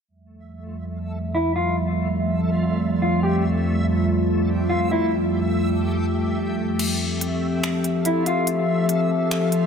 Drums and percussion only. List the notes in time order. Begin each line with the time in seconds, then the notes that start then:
6.79 closed hi-hat, crash
7.21 closed hi-hat
7.63 finger snap, closed hi-hat
7.84 closed hi-hat
8.05 closed hi-hat
8.26 closed hi-hat
8.47 closed hi-hat
8.89 closed hi-hat
9.31 finger snap, closed hi-hat
9.52 closed hi-hat